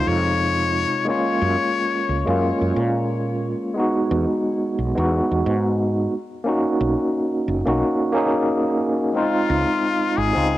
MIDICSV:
0, 0, Header, 1, 4, 480
1, 0, Start_track
1, 0, Key_signature, -5, "major"
1, 0, Tempo, 674157
1, 767, Time_signature, 4, 2, 24, 8
1, 7532, End_track
2, 0, Start_track
2, 0, Title_t, "Muted trumpet"
2, 0, Program_c, 0, 59
2, 53, Note_on_c, 0, 73, 113
2, 768, Note_off_c, 0, 73, 0
2, 773, Note_on_c, 0, 73, 101
2, 1701, Note_off_c, 0, 73, 0
2, 6526, Note_on_c, 0, 65, 100
2, 7247, Note_on_c, 0, 68, 121
2, 7258, Note_off_c, 0, 65, 0
2, 7532, Note_off_c, 0, 68, 0
2, 7532, End_track
3, 0, Start_track
3, 0, Title_t, "Tine electric piano"
3, 0, Program_c, 1, 4
3, 0, Control_c, 1, 64, 127
3, 0, Note_on_c, 1, 48, 67
3, 0, Note_on_c, 1, 56, 69
3, 0, Note_on_c, 1, 60, 79
3, 0, Note_on_c, 1, 63, 66
3, 0, Note_on_c, 1, 65, 82
3, 733, Note_off_c, 1, 56, 0
3, 740, Note_off_c, 1, 48, 0
3, 745, Note_off_c, 1, 63, 0
3, 747, Note_on_c, 1, 56, 84
3, 752, Note_off_c, 1, 65, 0
3, 758, Note_on_c, 1, 58, 74
3, 770, Note_on_c, 1, 61, 75
3, 775, Control_c, 1, 64, 0
3, 777, Note_off_c, 1, 60, 0
3, 783, Note_on_c, 1, 65, 90
3, 882, Control_c, 1, 64, 127
3, 1579, Note_off_c, 1, 56, 0
3, 1585, Note_off_c, 1, 58, 0
3, 1591, Note_off_c, 1, 61, 0
3, 1597, Note_off_c, 1, 65, 0
3, 1605, Note_on_c, 1, 56, 73
3, 1614, Note_on_c, 1, 58, 71
3, 1627, Note_on_c, 1, 61, 67
3, 1638, Note_on_c, 1, 65, 81
3, 2653, Note_off_c, 1, 56, 0
3, 2658, Note_off_c, 1, 58, 0
3, 2664, Note_off_c, 1, 61, 0
3, 2664, Note_on_c, 1, 56, 83
3, 2670, Note_off_c, 1, 65, 0
3, 2678, Note_on_c, 1, 59, 77
3, 2689, Note_on_c, 1, 63, 77
3, 2697, Control_c, 1, 64, 0
3, 2703, Note_on_c, 1, 66, 92
3, 2803, Control_c, 1, 64, 127
3, 3498, Note_off_c, 1, 56, 0
3, 3505, Note_off_c, 1, 59, 0
3, 3510, Note_off_c, 1, 63, 0
3, 3517, Note_off_c, 1, 66, 0
3, 3523, Note_on_c, 1, 56, 74
3, 3531, Note_on_c, 1, 59, 68
3, 3545, Note_on_c, 1, 63, 71
3, 3558, Note_on_c, 1, 66, 90
3, 4345, Note_off_c, 1, 56, 0
3, 4349, Note_off_c, 1, 59, 0
3, 4356, Note_off_c, 1, 63, 0
3, 4362, Note_off_c, 1, 66, 0
3, 4376, Control_c, 1, 64, 0
3, 4488, Control_c, 1, 64, 127
3, 4586, Note_on_c, 1, 58, 82
3, 4599, Note_on_c, 1, 61, 82
3, 4609, Note_on_c, 1, 63, 82
3, 4620, Note_on_c, 1, 66, 95
3, 5419, Note_off_c, 1, 58, 0
3, 5425, Note_off_c, 1, 61, 0
3, 5431, Note_off_c, 1, 63, 0
3, 5436, Note_off_c, 1, 66, 0
3, 5451, Note_on_c, 1, 58, 76
3, 5458, Note_on_c, 1, 61, 69
3, 5465, Note_on_c, 1, 63, 71
3, 5470, Note_on_c, 1, 66, 84
3, 5774, Note_off_c, 1, 58, 0
3, 5782, Note_on_c, 1, 58, 101
3, 5784, Note_off_c, 1, 61, 0
3, 5787, Note_off_c, 1, 63, 0
3, 5790, Note_off_c, 1, 66, 0
3, 5796, Note_on_c, 1, 61, 92
3, 5807, Note_on_c, 1, 63, 88
3, 5817, Note_on_c, 1, 68, 110
3, 6489, Note_off_c, 1, 58, 0
3, 6496, Note_off_c, 1, 61, 0
3, 6502, Note_off_c, 1, 63, 0
3, 6502, Note_on_c, 1, 56, 80
3, 6507, Note_off_c, 1, 68, 0
3, 6515, Note_on_c, 1, 60, 76
3, 6527, Note_on_c, 1, 63, 84
3, 6537, Note_on_c, 1, 65, 99
3, 6538, Control_c, 1, 64, 0
3, 6671, Control_c, 1, 64, 127
3, 7337, Note_off_c, 1, 56, 0
3, 7343, Note_off_c, 1, 60, 0
3, 7349, Note_off_c, 1, 63, 0
3, 7353, Note_on_c, 1, 56, 78
3, 7354, Note_off_c, 1, 65, 0
3, 7366, Note_on_c, 1, 60, 72
3, 7379, Note_on_c, 1, 63, 69
3, 7388, Note_on_c, 1, 65, 87
3, 7532, Note_off_c, 1, 56, 0
3, 7532, Note_off_c, 1, 60, 0
3, 7532, Note_off_c, 1, 63, 0
3, 7532, Note_off_c, 1, 65, 0
3, 7532, End_track
4, 0, Start_track
4, 0, Title_t, "Fretless electric bass"
4, 0, Program_c, 2, 35
4, 49, Note_on_c, 2, 41, 93
4, 598, Note_off_c, 2, 41, 0
4, 1008, Note_on_c, 2, 42, 98
4, 1102, Note_off_c, 2, 42, 0
4, 1488, Note_on_c, 2, 37, 81
4, 1582, Note_off_c, 2, 37, 0
4, 1618, Note_on_c, 2, 42, 92
4, 1779, Note_off_c, 2, 42, 0
4, 1860, Note_on_c, 2, 42, 82
4, 1935, Note_off_c, 2, 42, 0
4, 1967, Note_on_c, 2, 46, 100
4, 2517, Note_off_c, 2, 46, 0
4, 2927, Note_on_c, 2, 40, 93
4, 3021, Note_off_c, 2, 40, 0
4, 3408, Note_on_c, 2, 35, 86
4, 3502, Note_off_c, 2, 35, 0
4, 3543, Note_on_c, 2, 40, 93
4, 3701, Note_off_c, 2, 40, 0
4, 3785, Note_on_c, 2, 40, 82
4, 3857, Note_off_c, 2, 40, 0
4, 3891, Note_on_c, 2, 44, 102
4, 4318, Note_off_c, 2, 44, 0
4, 4846, Note_on_c, 2, 35, 96
4, 4941, Note_off_c, 2, 35, 0
4, 5325, Note_on_c, 2, 30, 86
4, 5420, Note_off_c, 2, 30, 0
4, 5459, Note_on_c, 2, 35, 94
4, 5566, Note_off_c, 2, 35, 0
4, 6762, Note_on_c, 2, 37, 103
4, 6859, Note_off_c, 2, 37, 0
4, 7246, Note_on_c, 2, 32, 82
4, 7341, Note_off_c, 2, 32, 0
4, 7380, Note_on_c, 2, 37, 95
4, 7532, Note_off_c, 2, 37, 0
4, 7532, End_track
0, 0, End_of_file